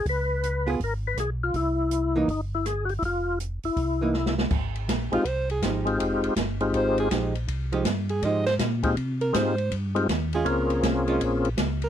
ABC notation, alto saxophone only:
X:1
M:4/4
L:1/8
Q:"Swing" 1/4=162
K:Fm
V:1 name="Alto saxophone"
z8 | z8 | z8 | z3 F c A z2 |
z3 F c A z2 | z3 A e c z2 | z B c2 z3 A | B2 z4 z B |]